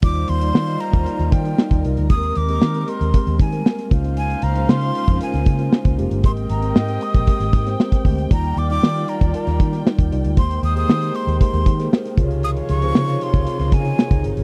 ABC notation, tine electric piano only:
X:1
M:4/4
L:1/16
Q:1/4=116
K:Eb
V:1 name="Tine electric piano"
[G,EFd]3 [G,EFd]2 [G,EFe]3 [G,EFd]3 [G,EFd]3 [G,EFB]2 | [A,CGB]3 [A,CGB]2 [A,CGB]3 [A,CGB]3 [G,A,CB]3 [A,_DFc]2- | [A,_DFc]3 [A,DFc]2 [A,DFc]3 [A,DFB]3 [A,DFc]3 [A,DFG]2 | [A,CGB]3 [A,CGB]2 [A,CGB]3 [A,CGB]3 [A,CGc]3 [A,CGc]2 |
[G,EFd]3 [G,EFd]2 [G,EFd]3 [G,EFB]3 [G,EFd]3 [G,EFd]2 | [A,B,Gc]3 [B,GAc]2 [A,B,Gc]3 [A,B,GB]3 [B,GAc]3 [C,FAc_d]2- | [C,FAc_d]3 [CFAc]2 [C,FAd]3 [C,FAd]3 [C,FAd]3 [CFAd]2 |]